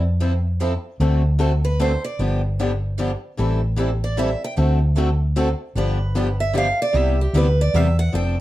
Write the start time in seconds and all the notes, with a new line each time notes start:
Already playing: F2
0.21 F3 C4 E4 A4
0.60 F3 C4 E4 A4
1.00 D2 D3 A3 C4 F#4 A4
1.40 D3 A3 C4 F#4 A4
1.65 B4
1.80 D3 A3 C4 F#4 A4 C5
2.04 D5
2.19 G1 D3 F3 B3 D4 G4
2.59 D3 F3 B3 D4 G4
2.98 D3 F3 B3 D4 G4
3.39 A1 E3 G3 C4 E4 A4
3.78 E3 G3 C4 E4 A4
4.04 D5
4.17 E3 G3 C4 E4 A4 E5
4.44 G5
4.56 D2 D3 A3 C4 F#4 A4
4.95 D3 A3 C4 F#4 A4
5.36 D3 A3 C4 F#4 A4
5.75 G1 D3 F3 B3 D4 G4 B4
6.16 D3 F3 B3 D4 G4
6.40 E5
6.55 D3 F3 B3 D4 G4 F5
6.82 D5
6.94 C2 C3 G3 B3 E4 G4 E5
7.21 G4
7.33 D2 C3 G3 B3 E4 G4 B4
7.61 D5
7.74 E2 C3 G3 B3 E4 G4 E5
7.99 F#5
8.13 F1 F3 C4 D4 A4 G5